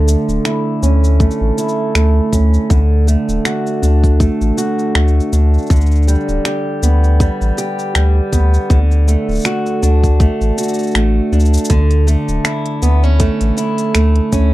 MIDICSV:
0, 0, Header, 1, 4, 480
1, 0, Start_track
1, 0, Key_signature, 2, "major"
1, 0, Tempo, 750000
1, 1729, Time_signature, 4, 2, 24, 8
1, 9304, End_track
2, 0, Start_track
2, 0, Title_t, "Steel-string acoustic guitar"
2, 0, Program_c, 0, 25
2, 0, Note_on_c, 0, 50, 72
2, 49, Note_on_c, 0, 57, 53
2, 288, Note_on_c, 0, 64, 60
2, 530, Note_on_c, 0, 61, 56
2, 767, Note_off_c, 0, 57, 0
2, 769, Note_on_c, 0, 57, 63
2, 1002, Note_off_c, 0, 64, 0
2, 1010, Note_on_c, 0, 64, 60
2, 1248, Note_off_c, 0, 57, 0
2, 1250, Note_on_c, 0, 57, 54
2, 1481, Note_off_c, 0, 61, 0
2, 1489, Note_on_c, 0, 61, 50
2, 1725, Note_off_c, 0, 50, 0
2, 1728, Note_on_c, 0, 50, 69
2, 1782, Note_off_c, 0, 61, 0
2, 1783, Note_off_c, 0, 64, 0
2, 1966, Note_off_c, 0, 57, 0
2, 1969, Note_on_c, 0, 57, 56
2, 2208, Note_on_c, 0, 66, 65
2, 2446, Note_on_c, 0, 62, 57
2, 2681, Note_off_c, 0, 57, 0
2, 2689, Note_on_c, 0, 57, 69
2, 2920, Note_off_c, 0, 66, 0
2, 2928, Note_on_c, 0, 66, 63
2, 3161, Note_off_c, 0, 57, 0
2, 3169, Note_on_c, 0, 57, 57
2, 3406, Note_off_c, 0, 62, 0
2, 3409, Note_on_c, 0, 62, 51
2, 3647, Note_off_c, 0, 50, 0
2, 3649, Note_on_c, 0, 50, 77
2, 3702, Note_off_c, 0, 66, 0
2, 3703, Note_off_c, 0, 57, 0
2, 3889, Note_on_c, 0, 55, 54
2, 4129, Note_on_c, 0, 67, 60
2, 4368, Note_off_c, 0, 62, 0
2, 4370, Note_on_c, 0, 59, 54
2, 4604, Note_off_c, 0, 55, 0
2, 4612, Note_on_c, 0, 55, 69
2, 4842, Note_off_c, 0, 67, 0
2, 4850, Note_on_c, 0, 67, 64
2, 5082, Note_off_c, 0, 55, 0
2, 5089, Note_on_c, 0, 55, 57
2, 5321, Note_off_c, 0, 59, 0
2, 5329, Note_on_c, 0, 59, 53
2, 5566, Note_off_c, 0, 50, 0
2, 5569, Note_on_c, 0, 50, 81
2, 5622, Note_off_c, 0, 59, 0
2, 5623, Note_off_c, 0, 55, 0
2, 5623, Note_off_c, 0, 67, 0
2, 5810, Note_on_c, 0, 57, 55
2, 6050, Note_on_c, 0, 66, 63
2, 6289, Note_on_c, 0, 62, 61
2, 6527, Note_off_c, 0, 57, 0
2, 6530, Note_on_c, 0, 57, 67
2, 6761, Note_off_c, 0, 66, 0
2, 6769, Note_on_c, 0, 66, 61
2, 7006, Note_off_c, 0, 57, 0
2, 7009, Note_on_c, 0, 57, 53
2, 7241, Note_off_c, 0, 62, 0
2, 7248, Note_on_c, 0, 62, 54
2, 7479, Note_off_c, 0, 50, 0
2, 7487, Note_on_c, 0, 50, 78
2, 7542, Note_off_c, 0, 62, 0
2, 7542, Note_off_c, 0, 66, 0
2, 7723, Note_off_c, 0, 57, 0
2, 7726, Note_on_c, 0, 57, 55
2, 7967, Note_on_c, 0, 64, 61
2, 8207, Note_on_c, 0, 59, 57
2, 8342, Note_off_c, 0, 59, 0
2, 8342, Note_on_c, 0, 61, 47
2, 8444, Note_off_c, 0, 57, 0
2, 8447, Note_on_c, 0, 57, 66
2, 8679, Note_off_c, 0, 64, 0
2, 8687, Note_on_c, 0, 64, 67
2, 8924, Note_off_c, 0, 57, 0
2, 8927, Note_on_c, 0, 57, 51
2, 9159, Note_off_c, 0, 61, 0
2, 9167, Note_on_c, 0, 61, 52
2, 9304, Note_off_c, 0, 50, 0
2, 9304, Note_off_c, 0, 57, 0
2, 9304, Note_off_c, 0, 61, 0
2, 9304, Note_off_c, 0, 64, 0
2, 9304, End_track
3, 0, Start_track
3, 0, Title_t, "Sub bass"
3, 0, Program_c, 1, 38
3, 0, Note_on_c, 1, 38, 90
3, 105, Note_off_c, 1, 38, 0
3, 183, Note_on_c, 1, 26, 76
3, 250, Note_off_c, 1, 26, 0
3, 529, Note_on_c, 1, 38, 91
3, 825, Note_off_c, 1, 38, 0
3, 903, Note_on_c, 1, 33, 88
3, 970, Note_off_c, 1, 33, 0
3, 1248, Note_on_c, 1, 38, 82
3, 1412, Note_off_c, 1, 38, 0
3, 1488, Note_on_c, 1, 38, 92
3, 1652, Note_off_c, 1, 38, 0
3, 1729, Note_on_c, 1, 38, 90
3, 2025, Note_off_c, 1, 38, 0
3, 2103, Note_on_c, 1, 26, 82
3, 2171, Note_off_c, 1, 26, 0
3, 2449, Note_on_c, 1, 38, 89
3, 2745, Note_off_c, 1, 38, 0
3, 2824, Note_on_c, 1, 33, 92
3, 2891, Note_off_c, 1, 33, 0
3, 3168, Note_on_c, 1, 38, 82
3, 3332, Note_off_c, 1, 38, 0
3, 3409, Note_on_c, 1, 38, 93
3, 3572, Note_off_c, 1, 38, 0
3, 3649, Note_on_c, 1, 38, 96
3, 3945, Note_off_c, 1, 38, 0
3, 4023, Note_on_c, 1, 26, 85
3, 4090, Note_off_c, 1, 26, 0
3, 4369, Note_on_c, 1, 38, 91
3, 4665, Note_off_c, 1, 38, 0
3, 4744, Note_on_c, 1, 33, 91
3, 4811, Note_off_c, 1, 33, 0
3, 5090, Note_on_c, 1, 38, 81
3, 5253, Note_off_c, 1, 38, 0
3, 5329, Note_on_c, 1, 38, 95
3, 5492, Note_off_c, 1, 38, 0
3, 5569, Note_on_c, 1, 38, 98
3, 5865, Note_off_c, 1, 38, 0
3, 5942, Note_on_c, 1, 26, 90
3, 6010, Note_off_c, 1, 26, 0
3, 6289, Note_on_c, 1, 38, 86
3, 6586, Note_off_c, 1, 38, 0
3, 6663, Note_on_c, 1, 33, 88
3, 6731, Note_off_c, 1, 33, 0
3, 7008, Note_on_c, 1, 33, 86
3, 7172, Note_off_c, 1, 33, 0
3, 7246, Note_on_c, 1, 38, 86
3, 7411, Note_off_c, 1, 38, 0
3, 7488, Note_on_c, 1, 38, 87
3, 7785, Note_off_c, 1, 38, 0
3, 7862, Note_on_c, 1, 26, 80
3, 7930, Note_off_c, 1, 26, 0
3, 8208, Note_on_c, 1, 38, 91
3, 8505, Note_off_c, 1, 38, 0
3, 8582, Note_on_c, 1, 33, 84
3, 8650, Note_off_c, 1, 33, 0
3, 8928, Note_on_c, 1, 38, 81
3, 9092, Note_off_c, 1, 38, 0
3, 9168, Note_on_c, 1, 38, 91
3, 9304, Note_off_c, 1, 38, 0
3, 9304, End_track
4, 0, Start_track
4, 0, Title_t, "Drums"
4, 51, Note_on_c, 9, 69, 71
4, 115, Note_off_c, 9, 69, 0
4, 186, Note_on_c, 9, 69, 29
4, 250, Note_off_c, 9, 69, 0
4, 289, Note_on_c, 9, 26, 91
4, 291, Note_on_c, 9, 69, 40
4, 353, Note_off_c, 9, 26, 0
4, 355, Note_off_c, 9, 69, 0
4, 531, Note_on_c, 9, 69, 69
4, 595, Note_off_c, 9, 69, 0
4, 666, Note_on_c, 9, 69, 32
4, 730, Note_off_c, 9, 69, 0
4, 768, Note_on_c, 9, 36, 105
4, 770, Note_on_c, 9, 69, 37
4, 832, Note_off_c, 9, 36, 0
4, 834, Note_off_c, 9, 69, 0
4, 838, Note_on_c, 9, 69, 27
4, 902, Note_off_c, 9, 69, 0
4, 1011, Note_on_c, 9, 69, 73
4, 1075, Note_off_c, 9, 69, 0
4, 1079, Note_on_c, 9, 69, 29
4, 1143, Note_off_c, 9, 69, 0
4, 1249, Note_on_c, 9, 26, 95
4, 1251, Note_on_c, 9, 69, 37
4, 1313, Note_off_c, 9, 26, 0
4, 1315, Note_off_c, 9, 69, 0
4, 1488, Note_on_c, 9, 36, 54
4, 1491, Note_on_c, 9, 69, 76
4, 1552, Note_off_c, 9, 36, 0
4, 1555, Note_off_c, 9, 69, 0
4, 1625, Note_on_c, 9, 69, 31
4, 1689, Note_off_c, 9, 69, 0
4, 1729, Note_on_c, 9, 36, 115
4, 1731, Note_on_c, 9, 69, 42
4, 1793, Note_off_c, 9, 36, 0
4, 1795, Note_off_c, 9, 69, 0
4, 1971, Note_on_c, 9, 69, 71
4, 2035, Note_off_c, 9, 69, 0
4, 2105, Note_on_c, 9, 69, 34
4, 2169, Note_off_c, 9, 69, 0
4, 2210, Note_on_c, 9, 26, 95
4, 2211, Note_on_c, 9, 69, 41
4, 2274, Note_off_c, 9, 26, 0
4, 2275, Note_off_c, 9, 69, 0
4, 2346, Note_on_c, 9, 69, 30
4, 2410, Note_off_c, 9, 69, 0
4, 2452, Note_on_c, 9, 69, 72
4, 2516, Note_off_c, 9, 69, 0
4, 2583, Note_on_c, 9, 36, 56
4, 2586, Note_on_c, 9, 69, 31
4, 2647, Note_off_c, 9, 36, 0
4, 2650, Note_off_c, 9, 69, 0
4, 2688, Note_on_c, 9, 36, 112
4, 2691, Note_on_c, 9, 69, 42
4, 2752, Note_off_c, 9, 36, 0
4, 2755, Note_off_c, 9, 69, 0
4, 2825, Note_on_c, 9, 69, 31
4, 2889, Note_off_c, 9, 69, 0
4, 2930, Note_on_c, 9, 69, 72
4, 2994, Note_off_c, 9, 69, 0
4, 3065, Note_on_c, 9, 69, 32
4, 3129, Note_off_c, 9, 69, 0
4, 3169, Note_on_c, 9, 26, 96
4, 3171, Note_on_c, 9, 69, 18
4, 3233, Note_off_c, 9, 26, 0
4, 3235, Note_off_c, 9, 69, 0
4, 3251, Note_on_c, 9, 69, 25
4, 3315, Note_off_c, 9, 69, 0
4, 3330, Note_on_c, 9, 69, 33
4, 3394, Note_off_c, 9, 69, 0
4, 3410, Note_on_c, 9, 69, 77
4, 3474, Note_off_c, 9, 69, 0
4, 3546, Note_on_c, 9, 69, 15
4, 3573, Note_off_c, 9, 69, 0
4, 3573, Note_on_c, 9, 69, 16
4, 3599, Note_off_c, 9, 69, 0
4, 3599, Note_on_c, 9, 69, 18
4, 3626, Note_off_c, 9, 69, 0
4, 3626, Note_on_c, 9, 69, 21
4, 3649, Note_on_c, 9, 36, 114
4, 3652, Note_off_c, 9, 69, 0
4, 3652, Note_on_c, 9, 69, 43
4, 3686, Note_off_c, 9, 69, 0
4, 3686, Note_on_c, 9, 69, 24
4, 3713, Note_off_c, 9, 36, 0
4, 3719, Note_off_c, 9, 69, 0
4, 3719, Note_on_c, 9, 69, 27
4, 3752, Note_off_c, 9, 69, 0
4, 3752, Note_on_c, 9, 69, 28
4, 3785, Note_off_c, 9, 69, 0
4, 3785, Note_on_c, 9, 69, 26
4, 3811, Note_off_c, 9, 69, 0
4, 3811, Note_on_c, 9, 69, 23
4, 3856, Note_off_c, 9, 69, 0
4, 3856, Note_on_c, 9, 69, 18
4, 3892, Note_off_c, 9, 69, 0
4, 3892, Note_on_c, 9, 69, 74
4, 3956, Note_off_c, 9, 69, 0
4, 3971, Note_on_c, 9, 69, 10
4, 4024, Note_off_c, 9, 69, 0
4, 4024, Note_on_c, 9, 69, 34
4, 4088, Note_off_c, 9, 69, 0
4, 4129, Note_on_c, 9, 26, 99
4, 4131, Note_on_c, 9, 69, 44
4, 4193, Note_off_c, 9, 26, 0
4, 4195, Note_off_c, 9, 69, 0
4, 4370, Note_on_c, 9, 69, 76
4, 4434, Note_off_c, 9, 69, 0
4, 4505, Note_on_c, 9, 69, 33
4, 4569, Note_off_c, 9, 69, 0
4, 4609, Note_on_c, 9, 36, 114
4, 4611, Note_on_c, 9, 69, 42
4, 4673, Note_off_c, 9, 36, 0
4, 4675, Note_off_c, 9, 69, 0
4, 4746, Note_on_c, 9, 69, 29
4, 4810, Note_off_c, 9, 69, 0
4, 4850, Note_on_c, 9, 69, 79
4, 4914, Note_off_c, 9, 69, 0
4, 4986, Note_on_c, 9, 69, 30
4, 5050, Note_off_c, 9, 69, 0
4, 5088, Note_on_c, 9, 26, 93
4, 5090, Note_on_c, 9, 69, 41
4, 5152, Note_off_c, 9, 26, 0
4, 5154, Note_off_c, 9, 69, 0
4, 5328, Note_on_c, 9, 36, 58
4, 5330, Note_on_c, 9, 69, 76
4, 5392, Note_off_c, 9, 36, 0
4, 5394, Note_off_c, 9, 69, 0
4, 5465, Note_on_c, 9, 69, 34
4, 5529, Note_off_c, 9, 69, 0
4, 5568, Note_on_c, 9, 36, 109
4, 5570, Note_on_c, 9, 69, 43
4, 5632, Note_off_c, 9, 36, 0
4, 5634, Note_off_c, 9, 69, 0
4, 5705, Note_on_c, 9, 69, 27
4, 5769, Note_off_c, 9, 69, 0
4, 5811, Note_on_c, 9, 69, 71
4, 5875, Note_off_c, 9, 69, 0
4, 5945, Note_on_c, 9, 69, 15
4, 5959, Note_off_c, 9, 69, 0
4, 5959, Note_on_c, 9, 69, 17
4, 5972, Note_off_c, 9, 69, 0
4, 5972, Note_on_c, 9, 69, 18
4, 5984, Note_off_c, 9, 69, 0
4, 5984, Note_on_c, 9, 69, 22
4, 5996, Note_off_c, 9, 69, 0
4, 5996, Note_on_c, 9, 69, 22
4, 6010, Note_off_c, 9, 69, 0
4, 6010, Note_on_c, 9, 69, 25
4, 6024, Note_off_c, 9, 69, 0
4, 6024, Note_on_c, 9, 69, 27
4, 6037, Note_off_c, 9, 69, 0
4, 6037, Note_on_c, 9, 69, 27
4, 6048, Note_on_c, 9, 26, 84
4, 6050, Note_off_c, 9, 69, 0
4, 6050, Note_on_c, 9, 69, 39
4, 6112, Note_off_c, 9, 26, 0
4, 6114, Note_off_c, 9, 69, 0
4, 6184, Note_on_c, 9, 69, 30
4, 6248, Note_off_c, 9, 69, 0
4, 6290, Note_on_c, 9, 69, 74
4, 6354, Note_off_c, 9, 69, 0
4, 6422, Note_on_c, 9, 36, 58
4, 6425, Note_on_c, 9, 69, 32
4, 6486, Note_off_c, 9, 36, 0
4, 6489, Note_off_c, 9, 69, 0
4, 6528, Note_on_c, 9, 36, 117
4, 6530, Note_on_c, 9, 69, 41
4, 6592, Note_off_c, 9, 36, 0
4, 6594, Note_off_c, 9, 69, 0
4, 6665, Note_on_c, 9, 69, 32
4, 6729, Note_off_c, 9, 69, 0
4, 6770, Note_on_c, 9, 69, 70
4, 6804, Note_off_c, 9, 69, 0
4, 6804, Note_on_c, 9, 69, 56
4, 6837, Note_off_c, 9, 69, 0
4, 6837, Note_on_c, 9, 69, 45
4, 6872, Note_off_c, 9, 69, 0
4, 6872, Note_on_c, 9, 69, 37
4, 6905, Note_off_c, 9, 69, 0
4, 6905, Note_on_c, 9, 69, 32
4, 6931, Note_off_c, 9, 69, 0
4, 6931, Note_on_c, 9, 69, 26
4, 6957, Note_off_c, 9, 69, 0
4, 6957, Note_on_c, 9, 69, 22
4, 6983, Note_off_c, 9, 69, 0
4, 6983, Note_on_c, 9, 69, 18
4, 7009, Note_on_c, 9, 26, 87
4, 7010, Note_off_c, 9, 69, 0
4, 7010, Note_on_c, 9, 69, 38
4, 7073, Note_off_c, 9, 26, 0
4, 7074, Note_off_c, 9, 69, 0
4, 7250, Note_on_c, 9, 69, 34
4, 7294, Note_off_c, 9, 69, 0
4, 7294, Note_on_c, 9, 69, 39
4, 7329, Note_off_c, 9, 69, 0
4, 7329, Note_on_c, 9, 69, 45
4, 7383, Note_off_c, 9, 69, 0
4, 7383, Note_on_c, 9, 69, 55
4, 7408, Note_off_c, 9, 69, 0
4, 7408, Note_on_c, 9, 69, 57
4, 7453, Note_off_c, 9, 69, 0
4, 7453, Note_on_c, 9, 69, 66
4, 7487, Note_on_c, 9, 36, 98
4, 7487, Note_on_c, 9, 42, 56
4, 7517, Note_off_c, 9, 69, 0
4, 7551, Note_off_c, 9, 36, 0
4, 7551, Note_off_c, 9, 42, 0
4, 7620, Note_on_c, 9, 42, 36
4, 7622, Note_on_c, 9, 69, 28
4, 7684, Note_off_c, 9, 42, 0
4, 7686, Note_off_c, 9, 69, 0
4, 7728, Note_on_c, 9, 69, 64
4, 7792, Note_off_c, 9, 69, 0
4, 7862, Note_on_c, 9, 69, 33
4, 7926, Note_off_c, 9, 69, 0
4, 7967, Note_on_c, 9, 26, 85
4, 7967, Note_on_c, 9, 42, 55
4, 7968, Note_on_c, 9, 69, 38
4, 8031, Note_off_c, 9, 26, 0
4, 8031, Note_off_c, 9, 42, 0
4, 8032, Note_off_c, 9, 69, 0
4, 8100, Note_on_c, 9, 42, 41
4, 8164, Note_off_c, 9, 42, 0
4, 8207, Note_on_c, 9, 69, 74
4, 8271, Note_off_c, 9, 69, 0
4, 8342, Note_on_c, 9, 69, 30
4, 8406, Note_off_c, 9, 69, 0
4, 8446, Note_on_c, 9, 42, 59
4, 8447, Note_on_c, 9, 36, 106
4, 8448, Note_on_c, 9, 69, 36
4, 8510, Note_off_c, 9, 42, 0
4, 8511, Note_off_c, 9, 36, 0
4, 8512, Note_off_c, 9, 69, 0
4, 8581, Note_on_c, 9, 42, 41
4, 8582, Note_on_c, 9, 69, 28
4, 8645, Note_off_c, 9, 42, 0
4, 8646, Note_off_c, 9, 69, 0
4, 8687, Note_on_c, 9, 69, 72
4, 8751, Note_off_c, 9, 69, 0
4, 8820, Note_on_c, 9, 42, 27
4, 8822, Note_on_c, 9, 69, 31
4, 8884, Note_off_c, 9, 42, 0
4, 8886, Note_off_c, 9, 69, 0
4, 8925, Note_on_c, 9, 26, 84
4, 8925, Note_on_c, 9, 42, 54
4, 8927, Note_on_c, 9, 69, 40
4, 8989, Note_off_c, 9, 26, 0
4, 8989, Note_off_c, 9, 42, 0
4, 8991, Note_off_c, 9, 69, 0
4, 9060, Note_on_c, 9, 42, 35
4, 9124, Note_off_c, 9, 42, 0
4, 9167, Note_on_c, 9, 69, 73
4, 9168, Note_on_c, 9, 36, 58
4, 9231, Note_off_c, 9, 69, 0
4, 9232, Note_off_c, 9, 36, 0
4, 9304, End_track
0, 0, End_of_file